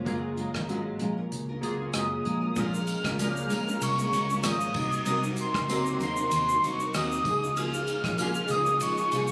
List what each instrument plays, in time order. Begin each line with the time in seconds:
0.04 fingered electric bass F#1, synth keys F#3 A#3 F4 G#4, nylon-string guitar F#3 G#3 C#4 F4 A#4, kick, closed hi-hat
0.37 nylon-string guitar G#3 C#4 F4 A#4, closed hi-hat
0.54 fingered electric bass G#1, nylon-string guitar C#4 F4 A#4, kick, cross-stick
0.69 nylon-string guitar F#3 G#3 C#4 F4 A#4, closed hi-hat
0.99 fingered electric bass A#1, nylon-string guitar G#3 C#4 F4, closed hi-hat
1.04 nylon-string guitar A#4
1.17 nylon-string guitar C#4 F4 A#4
1.32 fingered electric bass C#2, closed hi-hat
1.49 nylon-string guitar C#4 F4 A#4
1.61 fingered electric bass C#2, synth keys F#3 A#3 F4 G#4, closed hi-hat
1.79 nylon-string guitar C#4 F4 A#4
1.93 fingered electric bass F#1, nylon-string guitar F#3 G#3 C#4 F4 A#4, soft synth lead D#6, cross-stick, closed hi-hat
2.24 fingered electric bass A#1, nylon-string guitar G#3 C#4 F4 A#4, closed hi-hat
2.41 nylon-string guitar C#4 F4 A#4
2.56 fingered electric bass A#1, nylon-string guitar A#2 F3 G#3 C#4 F4 A#4, string machine G#3 A#3 C#4, soft synth lead F6, kick, ride, shaker
2.73 nylon-string guitar G#3 C#4 F4 A#4, shaker
2.87 ride, tambourine, shaker
3.03 fingered electric bass C#2, nylon-string guitar C#4 F4 A#4, kick, cross-stick, shaker
3.08 nylon-string guitar G#3
3.18 nylon-string guitar A#2 F3 G#3 C#4 F4 A#4, soft synth lead F6, ride, tambourine, shaker
3.36 shaker
3.48 fingered electric bass A#1, nylon-string guitar G#3 C#4 F4, ride, tambourine, shaker
3.53 nylon-string guitar A#4
3.67 nylon-string guitar G#3 C#4 F4 A#4, shaker
3.81 fingered electric bass C2, soft synth lead C#6, ride, tambourine, shaker
3.98 nylon-string guitar G#3 C#4 F4 A#4, shaker
4.11 fingered electric bass C#2, nylon-string guitar G#3 C#4 F4 A#4, ride, tambourine, shaker
4.28 nylon-string guitar G#3 C#4 F4 A#4, shaker
4.42 fingered electric bass G#1, nylon-string guitar A#2 F3 G#3 C#4 F4 A#4, soft synth lead D#6, cross-stick, ride, tambourine, shaker
4.61 shaker
4.73 fingered electric bass C2, string machine C3 C4 D#4 F#4 A#4, nylon-string guitar F#3 A#3 D#4, kick, tambourine, crash
4.78 nylon-string guitar A#4
4.92 shaker
5.04 fingered electric bass C2, nylon-string guitar C3 F#3 A#3 D#4 A#4, soft synth lead D#6, ride, tambourine, shaker
5.23 nylon-string guitar A#3 D#4 A#4, shaker
5.37 soft synth lead C6, ride, tambourine, shaker
5.54 fingered electric bass C#2, nylon-string guitar A#3 D#4 A#4, kick, cross-stick, shaker
5.68 nylon-string guitar C3 F#3 A#3 D#4 A#4, ride, tambourine, shaker
5.86 shaker
5.99 fingered electric bass D#2, nylon-string guitar F#3 A#3 D#4, soft synth lead C6, ride, tambourine, shaker
6.03 nylon-string guitar A#4
6.16 nylon-string guitar D#4 A#4, shaker
6.20 nylon-string guitar A#3
6.31 fingered electric bass D#2, soft synth lead C6, ride, tambourine, shaker
6.48 nylon-string guitar A#3 D#4 A#4, shaker
6.62 fingered electric bass C2, nylon-string guitar F#3 A#3 D#4, soft synth lead C#6, ride, tambourine, shaker
6.66 nylon-string guitar A#4
6.79 nylon-string guitar A#3 D#4 A#4, shaker
6.94 fingered electric bass D#2, nylon-string guitar C3 F#3 A#3 D#4 A#4, soft synth lead D#6, cross-stick, ride, tambourine, shaker
7.12 shaker
7.24 fingered electric bass C#2, nylon-string guitar F3 A#3 F4, string machine G#3 A#3 C#4 F4, kick, ride, tambourine, shaker
7.29 nylon-string guitar G#4
7.43 nylon-string guitar A#3 F4 G#4, shaker
7.56 nylon-string guitar C#3 F3 A#3 F4 G#4, soft synth lead F6, ride, shaker
7.74 nylon-string guitar A#3 F4 G#4, shaker
7.88 ride, tambourine, shaker
8.04 fingered electric bass A#1, nylon-string guitar F4 G#4, kick, cross-stick, shaker
8.09 nylon-string guitar A#3
8.18 nylon-string guitar C#3 F3 A#3 F4 G#4, soft synth lead F6, ride, tambourine, shaker
8.35 shaker
8.48 fingered electric bass C#2, nylon-string guitar F3 A#3, soft synth lead D#6, ride, tambourine, shaker
8.53 nylon-string guitar F4 G#4
8.66 nylon-string guitar F4 G#4, shaker
8.72 nylon-string guitar A#3
8.81 fingered electric bass A#1, soft synth lead C#6, ride, tambourine, shaker
8.97 nylon-string guitar F4 G#4, shaker
9.03 nylon-string guitar A#3
9.12 fingered electric bass C2, nylon-string guitar F3 A#3 F4, ride, tambourine, shaker
9.16 nylon-string guitar G#4
9.28 shaker